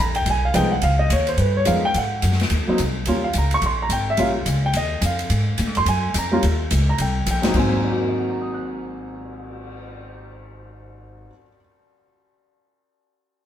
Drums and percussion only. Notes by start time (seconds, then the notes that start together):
0.15 ride
0.26 ride
0.54 hi-hat pedal, ride
0.82 ride
1.10 hi-hat pedal, ride
1.27 ride
1.38 ride
1.65 hi-hat pedal, ride
1.94 ride
2.22 hi-hat pedal, ride
2.32 snare
2.40 snare, ride
2.50 ride
2.78 hi-hat pedal, ride
3.05 ride
3.33 hi-hat pedal, ride
3.51 ride
3.62 ride
3.90 hi-hat pedal, ride
4.17 ride
4.46 hi-hat pedal, ride
4.73 ride
5.02 hi-hat pedal, ride
5.19 ride
5.30 ride
5.58 hi-hat pedal, ride
5.75 ride
5.86 ride
6.14 hi-hat pedal, ride
6.43 ride
6.71 hi-hat pedal, ride
6.98 ride
7.26 hi-hat pedal, ride
7.43 snare, ride
7.54 kick, crash
7.71 cymbal swell